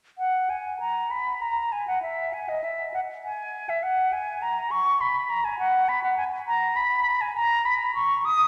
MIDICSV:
0, 0, Header, 1, 2, 480
1, 0, Start_track
1, 0, Key_signature, 5, "major"
1, 0, Tempo, 609756
1, 143, Time_signature, 3, 2, 24, 8
1, 2540, Tempo, 591716
1, 6799, End_track
2, 0, Start_track
2, 0, Title_t, "Flute"
2, 0, Program_c, 0, 73
2, 144, Note_on_c, 0, 78, 55
2, 391, Note_on_c, 0, 80, 47
2, 402, Note_off_c, 0, 78, 0
2, 625, Note_off_c, 0, 80, 0
2, 630, Note_on_c, 0, 82, 52
2, 872, Note_on_c, 0, 83, 55
2, 883, Note_off_c, 0, 82, 0
2, 1115, Note_on_c, 0, 82, 57
2, 1126, Note_off_c, 0, 83, 0
2, 1356, Note_on_c, 0, 80, 54
2, 1368, Note_off_c, 0, 82, 0
2, 1472, Note_off_c, 0, 80, 0
2, 1475, Note_on_c, 0, 78, 54
2, 1589, Note_off_c, 0, 78, 0
2, 1592, Note_on_c, 0, 76, 54
2, 1837, Note_on_c, 0, 80, 49
2, 1849, Note_off_c, 0, 76, 0
2, 1958, Note_on_c, 0, 75, 54
2, 1970, Note_off_c, 0, 80, 0
2, 2076, Note_on_c, 0, 76, 48
2, 2088, Note_off_c, 0, 75, 0
2, 2307, Note_off_c, 0, 76, 0
2, 2312, Note_on_c, 0, 78, 56
2, 2364, Note_off_c, 0, 78, 0
2, 2556, Note_on_c, 0, 80, 59
2, 2917, Note_on_c, 0, 76, 54
2, 2929, Note_off_c, 0, 80, 0
2, 3028, Note_on_c, 0, 78, 62
2, 3040, Note_off_c, 0, 76, 0
2, 3270, Note_on_c, 0, 80, 61
2, 3282, Note_off_c, 0, 78, 0
2, 3509, Note_on_c, 0, 82, 67
2, 3521, Note_off_c, 0, 80, 0
2, 3745, Note_on_c, 0, 85, 75
2, 3757, Note_off_c, 0, 82, 0
2, 3986, Note_on_c, 0, 83, 71
2, 3998, Note_off_c, 0, 85, 0
2, 4220, Note_on_c, 0, 82, 69
2, 4232, Note_off_c, 0, 83, 0
2, 4341, Note_on_c, 0, 80, 67
2, 4353, Note_off_c, 0, 82, 0
2, 4452, Note_off_c, 0, 80, 0
2, 4457, Note_on_c, 0, 78, 72
2, 4697, Note_on_c, 0, 83, 68
2, 4709, Note_off_c, 0, 78, 0
2, 4813, Note_off_c, 0, 83, 0
2, 4817, Note_on_c, 0, 78, 59
2, 4927, Note_off_c, 0, 78, 0
2, 4932, Note_on_c, 0, 80, 76
2, 4986, Note_off_c, 0, 80, 0
2, 5173, Note_on_c, 0, 82, 86
2, 5408, Note_on_c, 0, 83, 76
2, 5420, Note_off_c, 0, 82, 0
2, 5772, Note_on_c, 0, 80, 73
2, 5784, Note_off_c, 0, 83, 0
2, 5883, Note_off_c, 0, 80, 0
2, 5887, Note_on_c, 0, 82, 95
2, 6130, Note_on_c, 0, 83, 76
2, 6143, Note_off_c, 0, 82, 0
2, 6364, Note_off_c, 0, 83, 0
2, 6369, Note_on_c, 0, 85, 81
2, 6616, Note_on_c, 0, 87, 94
2, 6629, Note_off_c, 0, 85, 0
2, 6799, Note_off_c, 0, 87, 0
2, 6799, End_track
0, 0, End_of_file